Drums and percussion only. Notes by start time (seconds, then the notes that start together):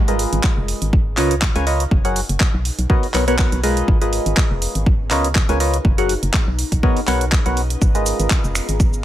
0.08 closed hi-hat
0.19 open hi-hat
0.33 closed hi-hat
0.43 kick, clap
0.68 open hi-hat
0.82 closed hi-hat
0.93 kick
1.17 clap, open hi-hat
1.31 closed hi-hat
1.42 kick, clap
1.56 closed hi-hat
1.67 open hi-hat
1.80 closed hi-hat
1.91 kick
2.05 closed hi-hat
2.16 open hi-hat
2.29 closed hi-hat
2.40 kick, clap
2.65 open hi-hat
2.79 closed hi-hat
2.90 kick
3.03 open hi-hat
3.14 clap, open hi-hat
3.28 closed hi-hat
3.38 kick, clap
3.52 closed hi-hat
3.64 open hi-hat
3.77 closed hi-hat
3.88 kick
4.02 closed hi-hat
4.13 open hi-hat
4.26 closed hi-hat
4.37 kick, clap
4.62 open hi-hat
4.75 closed hi-hat
4.86 kick
5.11 clap, open hi-hat
5.24 closed hi-hat
5.35 kick, clap
5.49 closed hi-hat
5.60 open hi-hat
5.74 closed hi-hat
5.85 kick
5.98 closed hi-hat
6.09 open hi-hat
6.23 closed hi-hat
6.33 kick, clap
6.59 open hi-hat
6.72 kick, closed hi-hat
6.83 kick
6.97 open hi-hat
7.07 clap, open hi-hat
7.21 closed hi-hat
7.32 kick, clap
7.46 closed hi-hat
7.57 open hi-hat
7.70 closed hi-hat
7.82 kick, cabasa
7.95 closed hi-hat, cabasa
8.06 open hi-hat, cabasa
8.20 closed hi-hat, cabasa
8.30 kick, clap, cabasa
8.44 cabasa
8.55 finger snap, open hi-hat, cabasa
8.69 closed hi-hat, cabasa
8.80 kick, cabasa
8.93 cabasa